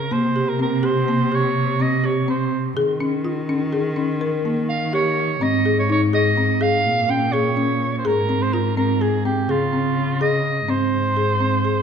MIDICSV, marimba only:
0, 0, Header, 1, 2, 480
1, 0, Start_track
1, 0, Tempo, 480384
1, 117, Time_signature, 11, 3, 24, 8
1, 11815, End_track
2, 0, Start_track
2, 0, Title_t, "Marimba"
2, 0, Program_c, 0, 12
2, 112, Note_on_c, 0, 58, 74
2, 308, Note_off_c, 0, 58, 0
2, 358, Note_on_c, 0, 67, 61
2, 551, Note_off_c, 0, 67, 0
2, 593, Note_on_c, 0, 60, 66
2, 789, Note_off_c, 0, 60, 0
2, 831, Note_on_c, 0, 67, 71
2, 1028, Note_off_c, 0, 67, 0
2, 1080, Note_on_c, 0, 58, 66
2, 1274, Note_off_c, 0, 58, 0
2, 1319, Note_on_c, 0, 67, 68
2, 1707, Note_off_c, 0, 67, 0
2, 1796, Note_on_c, 0, 60, 65
2, 1993, Note_off_c, 0, 60, 0
2, 2036, Note_on_c, 0, 67, 63
2, 2233, Note_off_c, 0, 67, 0
2, 2280, Note_on_c, 0, 60, 68
2, 2669, Note_off_c, 0, 60, 0
2, 2764, Note_on_c, 0, 68, 84
2, 2959, Note_off_c, 0, 68, 0
2, 3002, Note_on_c, 0, 61, 71
2, 3198, Note_off_c, 0, 61, 0
2, 3243, Note_on_c, 0, 65, 68
2, 3438, Note_off_c, 0, 65, 0
2, 3488, Note_on_c, 0, 61, 70
2, 3682, Note_off_c, 0, 61, 0
2, 3723, Note_on_c, 0, 68, 66
2, 3919, Note_off_c, 0, 68, 0
2, 3961, Note_on_c, 0, 61, 72
2, 4158, Note_off_c, 0, 61, 0
2, 4208, Note_on_c, 0, 70, 70
2, 4402, Note_off_c, 0, 70, 0
2, 4449, Note_on_c, 0, 58, 63
2, 4835, Note_off_c, 0, 58, 0
2, 4928, Note_on_c, 0, 67, 68
2, 5315, Note_off_c, 0, 67, 0
2, 5407, Note_on_c, 0, 60, 80
2, 5602, Note_off_c, 0, 60, 0
2, 5650, Note_on_c, 0, 68, 73
2, 5844, Note_off_c, 0, 68, 0
2, 5891, Note_on_c, 0, 63, 73
2, 6084, Note_off_c, 0, 63, 0
2, 6129, Note_on_c, 0, 68, 72
2, 6323, Note_off_c, 0, 68, 0
2, 6368, Note_on_c, 0, 60, 64
2, 6562, Note_off_c, 0, 60, 0
2, 6604, Note_on_c, 0, 68, 71
2, 6992, Note_off_c, 0, 68, 0
2, 7085, Note_on_c, 0, 61, 66
2, 7280, Note_off_c, 0, 61, 0
2, 7328, Note_on_c, 0, 68, 69
2, 7522, Note_off_c, 0, 68, 0
2, 7562, Note_on_c, 0, 61, 70
2, 7950, Note_off_c, 0, 61, 0
2, 8043, Note_on_c, 0, 68, 83
2, 8238, Note_off_c, 0, 68, 0
2, 8283, Note_on_c, 0, 60, 67
2, 8478, Note_off_c, 0, 60, 0
2, 8528, Note_on_c, 0, 65, 67
2, 8720, Note_off_c, 0, 65, 0
2, 8765, Note_on_c, 0, 60, 73
2, 8959, Note_off_c, 0, 60, 0
2, 9007, Note_on_c, 0, 68, 66
2, 9199, Note_off_c, 0, 68, 0
2, 9247, Note_on_c, 0, 60, 67
2, 9439, Note_off_c, 0, 60, 0
2, 9483, Note_on_c, 0, 68, 72
2, 9677, Note_off_c, 0, 68, 0
2, 9723, Note_on_c, 0, 60, 63
2, 10108, Note_off_c, 0, 60, 0
2, 10201, Note_on_c, 0, 68, 74
2, 10586, Note_off_c, 0, 68, 0
2, 10676, Note_on_c, 0, 60, 75
2, 11062, Note_off_c, 0, 60, 0
2, 11157, Note_on_c, 0, 68, 62
2, 11350, Note_off_c, 0, 68, 0
2, 11396, Note_on_c, 0, 60, 63
2, 11589, Note_off_c, 0, 60, 0
2, 11636, Note_on_c, 0, 68, 55
2, 11815, Note_off_c, 0, 68, 0
2, 11815, End_track
0, 0, End_of_file